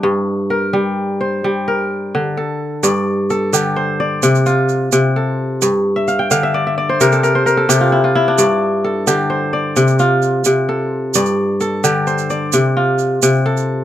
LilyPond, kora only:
<<
  \new Staff \with { instrumentName = "Kora" } { \time 12/8 \key g \dorian \tempo 4. = 87 << { r1. | r1. | r8. e''16 f''16 g''16 f''16 e''16 d''16 e''16 d''16 c''16 bes'16 a'16 bes'16 c''16 bes'16 a'16 g'16 f'16 e'16 f'16 e'16 d'16~ | d'16 r1 r4. r16 |
r1. | } \\ { d'8 r8 bes'4. c''4 bes'4. a'4 | d''4 a'8 g'8 c''8 d''4 f'4. a'4~ | a'8 r1 r4. | d''4 a'8 g'8 c''8 d''4 f'4. a'4 |
d''4 a'8 g'8 c''8 d''4 f'4. a'4 | } >> }
  \new Staff \with { instrumentName = "Kora" } { \clef bass \time 12/8 \key g \dorian g,4 r8 g4 r8 g4 r8 d4 r8 | g,4 r8 d4 r8 c4 r8 c4 r8 | g,4 r8 d4 r8 c4 r8 c4 r8 | g,4 r8 d4 r8 c4 r8 c4 r8 |
g,4 r8 d4 r8 c4 r8 c4 r8 | }
>>